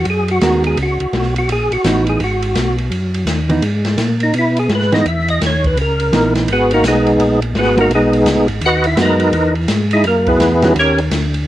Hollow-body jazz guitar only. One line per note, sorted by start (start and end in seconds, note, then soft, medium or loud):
0.42 0.77 G#3 medium
0.42 0.78 B3 medium
0.42 0.78 F#4 medium
0.42 0.78 A#4 medium
1.85 2.21 E3 medium
1.85 2.21 B3 medium
1.85 2.21 D#4 medium
3.50 3.62 E3 medium
3.50 3.62 B3 medium
3.50 3.62 D#4 medium
4.92 5.04 E3 medium
4.92 5.04 B3 medium
4.92 5.05 D#4 medium
6.13 6.48 E3 medium
6.13 6.49 B3 medium
6.13 6.49 D#4 medium
7.77 7.89 G#3 medium
7.77 7.90 B3 medium
7.77 7.90 F#4 medium
7.77 7.90 A#4 medium
8.98 9.33 G#3 medium
8.98 9.34 B3 medium
8.98 9.34 F#4 medium
10.63 10.75 D#3 medium
10.63 10.75 G3 medium
10.63 10.75 C#4 medium
10.63 10.76 F#4 medium